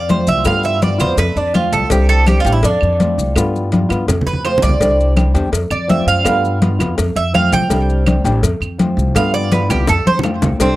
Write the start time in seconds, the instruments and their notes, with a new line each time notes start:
Already playing: upright bass F2
0.08 nylon-string guitar F3 A3 C4 F4, cuban tres C5, cowbell, high conga, maracas
0.27 upright bass C2, cuban tres E5, high conga, maracas
0.44 upright bass G2, nylon-string guitar G3 B3 F4, cuban tres F5, cowbell, high conga, claves, maracas
0.63 cuban tres E5, high conga, maracas
0.81 nylon-string guitar G3 B3 F4, cuban tres D5, cowbell, high conga, maracas
0.98 upright bass F2, nylon-string guitar B3 F4, cuban tres C5, cowbell, high conga, low conga, claves, maracas
1.17 upright bass F2, cuban tres B4, muted nylon-string guitar stroke, cowbell, high conga, maracas
1.36 upright bass F2, cuban tres D4, high conga, maracas
1.54 nylon-string guitar F3 A3 C4 F4, cuban tres F4, cowbell, high conga, claves, maracas
1.72 upright bass C2, cuban tres A4, cowbell, maracas
1.90 upright bass C2, nylon-string guitar C3 G3 C4 D4 G4, cuban tres G4, cowbell, high conga, maracas
2.09 cuban tres A4, high conga, maracas
2.27 nylon-string guitar G3 C4 D4 G4, cuban tres G4, cowbell, high conga, claves, maracas
2.40 cuban tres F4
2.45 upright bass A1, nylon-string guitar G3 C4 D4 G4, cowbell, high conga, maracas
2.52 cuban tres E4
2.63 upright bass F2, cuban tres D4, muted nylon-string guitar stroke, cowbell, high conga, maracas
2.81 upright bass F2, high conga, claves, maracas
2.99 nylon-string guitar F3 A3 C4 F4, cowbell, high conga, maracas
3.18 upright bass C2, maracas
3.36 upright bass G2, nylon-string guitar G3 B3 F4, cowbell, high conga, claves, maracas
3.55 high conga, maracas
3.72 nylon-string guitar G3 B3 F4, cowbell, high conga, maracas
3.89 upright bass G2, nylon-string guitar B3 F4, cowbell, claves, maracas
4.08 upright bass F2, muted nylon-string guitar stroke, cowbell, low conga, maracas
4.21 low conga
4.26 upright bass F2, cuban tres B4, maracas
4.33 low conga
4.44 nylon-string guitar F3 A3 C4 F4, cuban tres C5, cowbell, claves, maracas
4.58 low conga
4.62 upright bass C2, cuban tres D5, cowbell, maracas
4.69 low conga
4.79 upright bass C2, nylon-string guitar C3 G3 C4 D4 G4, cowbell, high conga, maracas
4.99 high conga, maracas
5.16 nylon-string guitar G3 C4 D4 G4, cowbell, high conga, claves, maracas
5.34 upright bass E2, nylon-string guitar G3 C4 D4 G4, cowbell, high conga, maracas
5.52 upright bass F2, muted nylon-string guitar stroke, cowbell, high conga, maracas
5.71 upright bass F2, cuban tres D5, high conga, claves, maracas
5.88 nylon-string guitar F3 A3 C4 F4, cuban tres E5, cowbell, high conga, maracas
6.07 upright bass F#2, cuban tres F5, maracas
6.24 upright bass G2, nylon-string guitar G3 B3 F4, cowbell, high conga, claves, maracas
6.45 high conga, maracas
6.61 nylon-string guitar G3 B3 F4, cowbell, high conga, maracas
6.79 upright bass F2, nylon-string guitar B3 F4, cowbell, high conga, low conga, claves, maracas
6.97 upright bass F2, muted nylon-string guitar stroke, cowbell, high conga, maracas
7.16 upright bass F2, cuban tres E5, high conga, maracas
7.33 nylon-string guitar F3 A3 C4 F4, cuban tres F5, cowbell, high conga, claves, maracas
7.52 upright bass C2, cuban tres G5, cowbell, high conga, maracas
7.70 upright bass C2, nylon-string guitar C3 G3 C4 D4 G4, cowbell, high conga, maracas
7.90 high conga, maracas
8.06 nylon-string guitar G3 C4 D4 G4, cowbell, high conga, claves, maracas
8.24 upright bass A1, nylon-string guitar G3 C4 D4 G4, cowbell, high conga, maracas
8.43 upright bass F2, muted nylon-string guitar stroke, cowbell, high conga, maracas
8.61 upright bass F2, high conga, claves, maracas
8.78 nylon-string guitar F3 A3 C4 F4, cowbell, high conga, maracas
8.97 upright bass C2, maracas
9.15 upright bass G2, nylon-string guitar G3 B3 F4, cuban tres F5, cowbell, high conga, claves, maracas
9.34 cuban tres D5, high conga, maracas
9.51 nylon-string guitar G3 B3 F4, cuban tres B4, cowbell, high conga, maracas
9.69 upright bass C2, nylon-string guitar B3 F4, cuban tres G4, cowbell, high conga, low conga, claves, maracas
9.87 upright bass F2, cuban tres A4, muted nylon-string guitar stroke, cowbell, high bongo, high conga, maracas
10.06 upright bass F2, cuban tres C5, high conga, maracas
10.19 low conga
10.23 nylon-string guitar F3 A3 C4 F4, cowbell, low bongo, claves, maracas
10.42 upright bass C2, cowbell, low bongo, low conga, maracas
10.59 upright bass C2, nylon-string guitar C3 G3 C4 D4 G4, cuban tres C4, cowbell, high conga, maracas